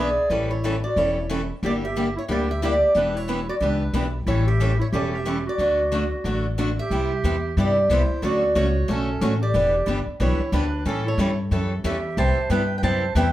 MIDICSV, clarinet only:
0, 0, Header, 1, 2, 480
1, 0, Start_track
1, 0, Key_signature, 2, "major"
1, 0, Tempo, 329670
1, 443, Time_signature, 4, 2, 24, 8
1, 19401, End_track
2, 0, Start_track
2, 0, Title_t, "Clarinet"
2, 0, Program_c, 0, 71
2, 0, Note_on_c, 0, 68, 70
2, 405, Note_off_c, 0, 68, 0
2, 442, Note_on_c, 0, 64, 75
2, 707, Note_off_c, 0, 64, 0
2, 740, Note_on_c, 0, 64, 68
2, 1182, Note_off_c, 0, 64, 0
2, 1238, Note_on_c, 0, 66, 60
2, 1431, Note_on_c, 0, 64, 60
2, 1453, Note_off_c, 0, 66, 0
2, 1900, Note_off_c, 0, 64, 0
2, 2399, Note_on_c, 0, 67, 80
2, 2521, Note_off_c, 0, 67, 0
2, 2663, Note_on_c, 0, 67, 79
2, 3107, Note_off_c, 0, 67, 0
2, 3147, Note_on_c, 0, 64, 63
2, 3233, Note_off_c, 0, 64, 0
2, 3356, Note_on_c, 0, 67, 80
2, 3589, Note_off_c, 0, 67, 0
2, 3635, Note_on_c, 0, 67, 71
2, 3823, Note_off_c, 0, 67, 0
2, 3836, Note_on_c, 0, 67, 79
2, 4273, Note_off_c, 0, 67, 0
2, 4304, Note_on_c, 0, 62, 73
2, 4581, Note_on_c, 0, 64, 67
2, 4602, Note_off_c, 0, 62, 0
2, 5062, Note_off_c, 0, 64, 0
2, 5079, Note_on_c, 0, 66, 66
2, 5164, Note_off_c, 0, 66, 0
2, 5267, Note_on_c, 0, 62, 61
2, 5710, Note_off_c, 0, 62, 0
2, 6209, Note_on_c, 0, 64, 78
2, 6479, Note_off_c, 0, 64, 0
2, 6503, Note_on_c, 0, 67, 86
2, 6951, Note_off_c, 0, 67, 0
2, 6972, Note_on_c, 0, 64, 71
2, 7064, Note_off_c, 0, 64, 0
2, 7171, Note_on_c, 0, 67, 76
2, 7404, Note_off_c, 0, 67, 0
2, 7458, Note_on_c, 0, 67, 75
2, 7942, Note_off_c, 0, 67, 0
2, 7956, Note_on_c, 0, 66, 70
2, 9530, Note_off_c, 0, 66, 0
2, 9896, Note_on_c, 0, 67, 84
2, 10979, Note_off_c, 0, 67, 0
2, 11052, Note_on_c, 0, 67, 81
2, 11485, Note_off_c, 0, 67, 0
2, 11515, Note_on_c, 0, 64, 75
2, 11955, Note_off_c, 0, 64, 0
2, 12002, Note_on_c, 0, 66, 86
2, 12438, Note_off_c, 0, 66, 0
2, 12459, Note_on_c, 0, 66, 74
2, 12906, Note_off_c, 0, 66, 0
2, 12963, Note_on_c, 0, 61, 74
2, 13662, Note_off_c, 0, 61, 0
2, 13713, Note_on_c, 0, 67, 82
2, 14608, Note_off_c, 0, 67, 0
2, 14864, Note_on_c, 0, 64, 78
2, 15305, Note_off_c, 0, 64, 0
2, 15341, Note_on_c, 0, 62, 73
2, 15783, Note_off_c, 0, 62, 0
2, 15810, Note_on_c, 0, 61, 70
2, 16075, Note_off_c, 0, 61, 0
2, 16097, Note_on_c, 0, 64, 65
2, 16542, Note_off_c, 0, 64, 0
2, 17242, Note_on_c, 0, 67, 79
2, 17691, Note_off_c, 0, 67, 0
2, 17742, Note_on_c, 0, 72, 98
2, 18181, Note_off_c, 0, 72, 0
2, 18220, Note_on_c, 0, 71, 77
2, 18582, Note_off_c, 0, 71, 0
2, 18608, Note_on_c, 0, 71, 61
2, 18677, Note_off_c, 0, 71, 0
2, 18686, Note_on_c, 0, 72, 87
2, 19131, Note_off_c, 0, 72, 0
2, 19151, Note_on_c, 0, 71, 75
2, 19401, Note_off_c, 0, 71, 0
2, 19401, End_track
0, 0, End_of_file